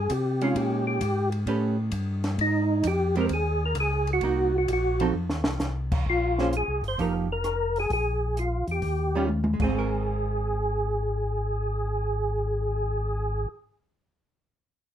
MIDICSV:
0, 0, Header, 1, 5, 480
1, 0, Start_track
1, 0, Key_signature, -4, "major"
1, 0, Tempo, 459067
1, 583, Time_signature, 4, 2, 24, 8
1, 15621, End_track
2, 0, Start_track
2, 0, Title_t, "Tonewheel organ"
2, 0, Program_c, 0, 16
2, 0, Note_on_c, 0, 68, 89
2, 125, Note_on_c, 0, 67, 83
2, 136, Note_off_c, 0, 68, 0
2, 452, Note_off_c, 0, 67, 0
2, 457, Note_on_c, 0, 65, 75
2, 594, Note_on_c, 0, 67, 86
2, 600, Note_off_c, 0, 65, 0
2, 900, Note_off_c, 0, 67, 0
2, 912, Note_on_c, 0, 67, 81
2, 1357, Note_off_c, 0, 67, 0
2, 2521, Note_on_c, 0, 63, 83
2, 3004, Note_off_c, 0, 63, 0
2, 3006, Note_on_c, 0, 67, 91
2, 3299, Note_off_c, 0, 67, 0
2, 3353, Note_on_c, 0, 70, 94
2, 3411, Note_off_c, 0, 70, 0
2, 3486, Note_on_c, 0, 68, 97
2, 3810, Note_off_c, 0, 68, 0
2, 3822, Note_on_c, 0, 70, 85
2, 3947, Note_off_c, 0, 70, 0
2, 3976, Note_on_c, 0, 68, 92
2, 4295, Note_off_c, 0, 68, 0
2, 4320, Note_on_c, 0, 66, 96
2, 4776, Note_off_c, 0, 66, 0
2, 4789, Note_on_c, 0, 66, 78
2, 4923, Note_off_c, 0, 66, 0
2, 4944, Note_on_c, 0, 66, 76
2, 5370, Note_off_c, 0, 66, 0
2, 6374, Note_on_c, 0, 65, 84
2, 6851, Note_off_c, 0, 65, 0
2, 6867, Note_on_c, 0, 68, 88
2, 7152, Note_off_c, 0, 68, 0
2, 7194, Note_on_c, 0, 72, 91
2, 7314, Note_off_c, 0, 72, 0
2, 7334, Note_on_c, 0, 70, 84
2, 7475, Note_off_c, 0, 70, 0
2, 7657, Note_on_c, 0, 70, 88
2, 8139, Note_off_c, 0, 70, 0
2, 8152, Note_on_c, 0, 68, 74
2, 8274, Note_off_c, 0, 68, 0
2, 8295, Note_on_c, 0, 68, 88
2, 8774, Note_off_c, 0, 68, 0
2, 8774, Note_on_c, 0, 65, 74
2, 9066, Note_off_c, 0, 65, 0
2, 9112, Note_on_c, 0, 67, 71
2, 9682, Note_off_c, 0, 67, 0
2, 10059, Note_on_c, 0, 68, 66
2, 14100, Note_off_c, 0, 68, 0
2, 15621, End_track
3, 0, Start_track
3, 0, Title_t, "Hollow-body jazz guitar"
3, 0, Program_c, 1, 26
3, 437, Note_on_c, 1, 56, 59
3, 442, Note_on_c, 1, 61, 68
3, 445, Note_on_c, 1, 63, 66
3, 1034, Note_off_c, 1, 56, 0
3, 1036, Note_off_c, 1, 61, 0
3, 1038, Note_off_c, 1, 63, 0
3, 1542, Note_on_c, 1, 57, 56
3, 1544, Note_on_c, 1, 61, 57
3, 1549, Note_on_c, 1, 67, 64
3, 1556, Note_on_c, 1, 71, 57
3, 1836, Note_off_c, 1, 57, 0
3, 1838, Note_off_c, 1, 61, 0
3, 1840, Note_off_c, 1, 67, 0
3, 1844, Note_off_c, 1, 71, 0
3, 3312, Note_on_c, 1, 56, 59
3, 3313, Note_on_c, 1, 67, 63
3, 3314, Note_on_c, 1, 60, 62
3, 3322, Note_on_c, 1, 70, 59
3, 3446, Note_off_c, 1, 56, 0
3, 3446, Note_off_c, 1, 67, 0
3, 3447, Note_off_c, 1, 60, 0
3, 3451, Note_off_c, 1, 70, 0
3, 4426, Note_on_c, 1, 58, 65
3, 4435, Note_on_c, 1, 63, 62
3, 4442, Note_on_c, 1, 66, 63
3, 4718, Note_off_c, 1, 58, 0
3, 4723, Note_off_c, 1, 63, 0
3, 4727, Note_off_c, 1, 66, 0
3, 5231, Note_on_c, 1, 53, 58
3, 5238, Note_on_c, 1, 60, 62
3, 5238, Note_on_c, 1, 63, 69
3, 5247, Note_on_c, 1, 69, 56
3, 5365, Note_off_c, 1, 53, 0
3, 5369, Note_off_c, 1, 60, 0
3, 5369, Note_off_c, 1, 63, 0
3, 5373, Note_off_c, 1, 69, 0
3, 6691, Note_on_c, 1, 58, 52
3, 6692, Note_on_c, 1, 61, 59
3, 6696, Note_on_c, 1, 68, 58
3, 6698, Note_on_c, 1, 72, 57
3, 6816, Note_off_c, 1, 58, 0
3, 6817, Note_off_c, 1, 61, 0
3, 6819, Note_off_c, 1, 68, 0
3, 6820, Note_off_c, 1, 72, 0
3, 7308, Note_on_c, 1, 53, 50
3, 7308, Note_on_c, 1, 58, 47
3, 7317, Note_on_c, 1, 63, 49
3, 7322, Note_on_c, 1, 67, 49
3, 7601, Note_off_c, 1, 53, 0
3, 7601, Note_off_c, 1, 58, 0
3, 7606, Note_off_c, 1, 63, 0
3, 7608, Note_off_c, 1, 67, 0
3, 9571, Note_on_c, 1, 51, 60
3, 9575, Note_on_c, 1, 55, 64
3, 9582, Note_on_c, 1, 61, 68
3, 9585, Note_on_c, 1, 65, 73
3, 9698, Note_off_c, 1, 51, 0
3, 9700, Note_off_c, 1, 55, 0
3, 9703, Note_off_c, 1, 61, 0
3, 9705, Note_off_c, 1, 65, 0
3, 9971, Note_on_c, 1, 56, 52
3, 10077, Note_on_c, 1, 60, 58
3, 10232, Note_on_c, 1, 70, 60
3, 14053, Note_off_c, 1, 56, 0
3, 14160, Note_off_c, 1, 60, 0
3, 14315, Note_off_c, 1, 70, 0
3, 15621, End_track
4, 0, Start_track
4, 0, Title_t, "Tonewheel organ"
4, 0, Program_c, 2, 16
4, 100, Note_on_c, 2, 48, 76
4, 566, Note_off_c, 2, 48, 0
4, 574, Note_on_c, 2, 46, 78
4, 1042, Note_off_c, 2, 46, 0
4, 1055, Note_on_c, 2, 44, 77
4, 1523, Note_off_c, 2, 44, 0
4, 1529, Note_on_c, 2, 45, 74
4, 2000, Note_off_c, 2, 45, 0
4, 2010, Note_on_c, 2, 43, 74
4, 2480, Note_off_c, 2, 43, 0
4, 2489, Note_on_c, 2, 44, 84
4, 2959, Note_off_c, 2, 44, 0
4, 2969, Note_on_c, 2, 41, 79
4, 3439, Note_off_c, 2, 41, 0
4, 3447, Note_on_c, 2, 39, 80
4, 3918, Note_off_c, 2, 39, 0
4, 3926, Note_on_c, 2, 37, 79
4, 4398, Note_off_c, 2, 37, 0
4, 4410, Note_on_c, 2, 36, 76
4, 4880, Note_off_c, 2, 36, 0
4, 4896, Note_on_c, 2, 34, 82
4, 5364, Note_off_c, 2, 34, 0
4, 5380, Note_on_c, 2, 41, 75
4, 5535, Note_off_c, 2, 41, 0
4, 5538, Note_on_c, 2, 39, 49
4, 5699, Note_off_c, 2, 39, 0
4, 5702, Note_on_c, 2, 36, 58
4, 5838, Note_off_c, 2, 36, 0
4, 5850, Note_on_c, 2, 36, 72
4, 6321, Note_off_c, 2, 36, 0
4, 6339, Note_on_c, 2, 34, 82
4, 6938, Note_off_c, 2, 34, 0
4, 6983, Note_on_c, 2, 36, 57
4, 7127, Note_on_c, 2, 31, 61
4, 7131, Note_off_c, 2, 36, 0
4, 7283, Note_off_c, 2, 31, 0
4, 7298, Note_on_c, 2, 29, 70
4, 8219, Note_off_c, 2, 29, 0
4, 8257, Note_on_c, 2, 34, 78
4, 9028, Note_off_c, 2, 34, 0
4, 9072, Note_on_c, 2, 40, 64
4, 9213, Note_off_c, 2, 40, 0
4, 9225, Note_on_c, 2, 39, 74
4, 9993, Note_off_c, 2, 39, 0
4, 10038, Note_on_c, 2, 32, 78
4, 14079, Note_off_c, 2, 32, 0
4, 15621, End_track
5, 0, Start_track
5, 0, Title_t, "Drums"
5, 101, Note_on_c, 9, 44, 53
5, 101, Note_on_c, 9, 51, 65
5, 103, Note_on_c, 9, 36, 23
5, 206, Note_off_c, 9, 44, 0
5, 206, Note_off_c, 9, 51, 0
5, 208, Note_off_c, 9, 36, 0
5, 432, Note_on_c, 9, 51, 44
5, 537, Note_off_c, 9, 51, 0
5, 581, Note_on_c, 9, 36, 19
5, 583, Note_on_c, 9, 51, 59
5, 686, Note_off_c, 9, 36, 0
5, 687, Note_off_c, 9, 51, 0
5, 1054, Note_on_c, 9, 44, 51
5, 1054, Note_on_c, 9, 51, 64
5, 1056, Note_on_c, 9, 36, 22
5, 1159, Note_off_c, 9, 44, 0
5, 1159, Note_off_c, 9, 51, 0
5, 1161, Note_off_c, 9, 36, 0
5, 1382, Note_on_c, 9, 51, 43
5, 1487, Note_off_c, 9, 51, 0
5, 1533, Note_on_c, 9, 36, 17
5, 1536, Note_on_c, 9, 51, 57
5, 1638, Note_off_c, 9, 36, 0
5, 1640, Note_off_c, 9, 51, 0
5, 2003, Note_on_c, 9, 44, 47
5, 2003, Note_on_c, 9, 51, 60
5, 2010, Note_on_c, 9, 36, 21
5, 2107, Note_off_c, 9, 44, 0
5, 2107, Note_off_c, 9, 51, 0
5, 2114, Note_off_c, 9, 36, 0
5, 2340, Note_on_c, 9, 51, 42
5, 2342, Note_on_c, 9, 38, 41
5, 2444, Note_off_c, 9, 51, 0
5, 2446, Note_off_c, 9, 38, 0
5, 2492, Note_on_c, 9, 36, 21
5, 2496, Note_on_c, 9, 51, 50
5, 2596, Note_off_c, 9, 36, 0
5, 2600, Note_off_c, 9, 51, 0
5, 2965, Note_on_c, 9, 44, 54
5, 2965, Note_on_c, 9, 51, 62
5, 2970, Note_on_c, 9, 36, 18
5, 3069, Note_off_c, 9, 44, 0
5, 3069, Note_off_c, 9, 51, 0
5, 3074, Note_off_c, 9, 36, 0
5, 3298, Note_on_c, 9, 51, 42
5, 3403, Note_off_c, 9, 51, 0
5, 3441, Note_on_c, 9, 51, 57
5, 3449, Note_on_c, 9, 36, 21
5, 3546, Note_off_c, 9, 51, 0
5, 3554, Note_off_c, 9, 36, 0
5, 3921, Note_on_c, 9, 44, 53
5, 3921, Note_on_c, 9, 51, 65
5, 3931, Note_on_c, 9, 36, 19
5, 4025, Note_off_c, 9, 44, 0
5, 4025, Note_off_c, 9, 51, 0
5, 4036, Note_off_c, 9, 36, 0
5, 4258, Note_on_c, 9, 51, 43
5, 4363, Note_off_c, 9, 51, 0
5, 4402, Note_on_c, 9, 51, 49
5, 4413, Note_on_c, 9, 36, 21
5, 4507, Note_off_c, 9, 51, 0
5, 4518, Note_off_c, 9, 36, 0
5, 4896, Note_on_c, 9, 44, 49
5, 4896, Note_on_c, 9, 51, 62
5, 4897, Note_on_c, 9, 36, 20
5, 5001, Note_off_c, 9, 44, 0
5, 5001, Note_off_c, 9, 51, 0
5, 5002, Note_off_c, 9, 36, 0
5, 5226, Note_on_c, 9, 51, 44
5, 5330, Note_off_c, 9, 51, 0
5, 5537, Note_on_c, 9, 38, 51
5, 5642, Note_off_c, 9, 38, 0
5, 5687, Note_on_c, 9, 38, 77
5, 5792, Note_off_c, 9, 38, 0
5, 5852, Note_on_c, 9, 44, 58
5, 5854, Note_on_c, 9, 38, 52
5, 5957, Note_off_c, 9, 44, 0
5, 5959, Note_off_c, 9, 38, 0
5, 6186, Note_on_c, 9, 49, 65
5, 6188, Note_on_c, 9, 36, 67
5, 6291, Note_off_c, 9, 49, 0
5, 6293, Note_off_c, 9, 36, 0
5, 6339, Note_on_c, 9, 36, 32
5, 6444, Note_off_c, 9, 36, 0
5, 6676, Note_on_c, 9, 38, 36
5, 6781, Note_off_c, 9, 38, 0
5, 6826, Note_on_c, 9, 42, 51
5, 6930, Note_off_c, 9, 42, 0
5, 7150, Note_on_c, 9, 46, 35
5, 7255, Note_off_c, 9, 46, 0
5, 7302, Note_on_c, 9, 36, 32
5, 7309, Note_on_c, 9, 46, 41
5, 7407, Note_off_c, 9, 36, 0
5, 7414, Note_off_c, 9, 46, 0
5, 7781, Note_on_c, 9, 42, 47
5, 7783, Note_on_c, 9, 37, 55
5, 7885, Note_off_c, 9, 42, 0
5, 7887, Note_off_c, 9, 37, 0
5, 8114, Note_on_c, 9, 46, 38
5, 8219, Note_off_c, 9, 46, 0
5, 8264, Note_on_c, 9, 36, 31
5, 8264, Note_on_c, 9, 46, 40
5, 8368, Note_off_c, 9, 36, 0
5, 8368, Note_off_c, 9, 46, 0
5, 8752, Note_on_c, 9, 42, 47
5, 8856, Note_off_c, 9, 42, 0
5, 9071, Note_on_c, 9, 46, 33
5, 9176, Note_off_c, 9, 46, 0
5, 9222, Note_on_c, 9, 46, 41
5, 9225, Note_on_c, 9, 36, 29
5, 9327, Note_off_c, 9, 46, 0
5, 9330, Note_off_c, 9, 36, 0
5, 9712, Note_on_c, 9, 48, 38
5, 9817, Note_off_c, 9, 48, 0
5, 9868, Note_on_c, 9, 48, 48
5, 9973, Note_off_c, 9, 48, 0
5, 10034, Note_on_c, 9, 49, 53
5, 10036, Note_on_c, 9, 36, 50
5, 10139, Note_off_c, 9, 49, 0
5, 10141, Note_off_c, 9, 36, 0
5, 15621, End_track
0, 0, End_of_file